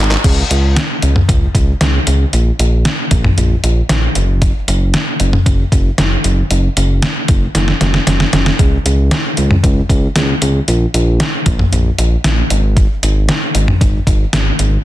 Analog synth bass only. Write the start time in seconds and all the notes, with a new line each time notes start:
0.00 G#1
0.24 C#2
0.50 C#2
1.03 C#2
1.29 C#2
1.55 C#2
1.81 C#2
2.07 C#2
2.33 A#1
2.59 A#1
3.11 A#1
3.37 A#1
3.63 A#1
3.90 A#1
4.16 F#1
4.68 F#1
5.20 F#1
5.46 F#1
5.72 F#1
5.98 F#1
6.24 F#1
6.50 F#1
6.77 F#1
7.29 F#1
7.55 F#1
7.81 F#1
8.07 F#1
8.33 F#1
8.59 C#2
8.85 C#2
9.37 C#2
9.63 C#2
9.89 C#2
10.16 C#2
10.42 C#2
10.68 A#1
10.94 A#1
11.46 A#1
11.72 A#1
11.98 A#1
12.24 A#1
12.50 G#1
13.03 G#1
13.55 G#1
13.81 G#1
14.07 G#1
14.33 G#1
14.59 G#1